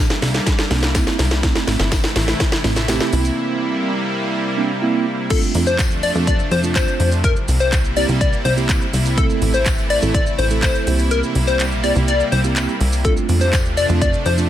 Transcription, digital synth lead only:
5.30 A4
5.67 C5
6.03 D5
6.27 D5
6.51 C5
6.76 C5
7.24 A#4
7.60 C5
7.97 D5
8.21 D5
8.45 C5
9.17 A4
9.54 C5
9.90 D5
10.14 D5
10.38 C5
10.63 C5
11.11 A#4
11.47 C5
11.84 D5
12.08 D5
12.32 C5
13.05 A4
13.41 C5
13.77 D5
14.01 D5
14.26 C5

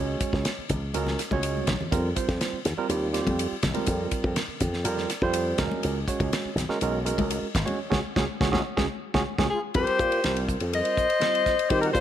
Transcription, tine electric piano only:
Already playing: G#3 C#4 F#4 C#5
0.94 G#3 C#4 F#4 A#4
1.32 G#3 C#4 F#4 C#5
1.91 G3 C4 F4 A#4
2.16 G3 C4 F4 C5
2.78 G3 C4 F4 A#4
2.90 G3 C4 F4 G4
3.13 G3 C4 F4 G4
3.74 G3 C4 F4 A#4
4.84 G3 C4 F4 A#4
5.22 G3 C4 F4 C5
5.58 G#3 C#4 F#4 A#4
6.08 G#3 C#4 F#4 C#5
6.69 G#3 C#4 F#4 A#4
6.82 G#3 C#4 F#4 A#4
7.05 G#3 C#4 F#4 A#4
7.65 G#3 C#4 F#4 C#5
7.90 C#4 F#4 G#4
8.16 C#4 F#4 G#4
8.41 C#4 F#4 G#4
8.52 C#4 F#4 G#4
8.77 C#4 F#4 G#4
9.14 C#4 F#4 G#4
9.38 C#4 F#4 G#4
9.75 G3 C4 F4 A#4
10.24 G3 C4 F4 A#4
10.73 G3 C4 F4 A#4
11.20 G3 C4 F4 C5
11.70 G3 C4 F4 G4

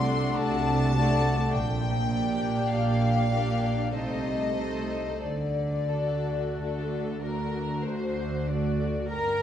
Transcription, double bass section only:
Already playing: C2
0.39 C2
1.54 A#1
2.72 A#1
3.95 C2
5.23 D2
6.57 D2
7.86 D2
9.10 G1

